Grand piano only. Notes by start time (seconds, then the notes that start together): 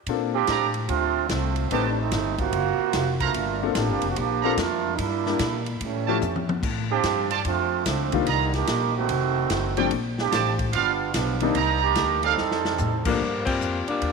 0.09 A#3 C4 D4 F4 A4
1.72 A3 C4 D#4 G4 B4
3.62 A#3 C4 D4 F4 A4
4.44 A#3 C4 D4 F4 A4
5.26 G3 A#3 D4 E4 G4
6.08 F3 A3 C#4 E4 G4
8.13 D#3 G3 A#3 D4 F4
9.77 F3 G3 A3 C4 D4
11.41 D#3 G3 A#3 C4 D4
13.07 F3 G3 A3 A#3 D4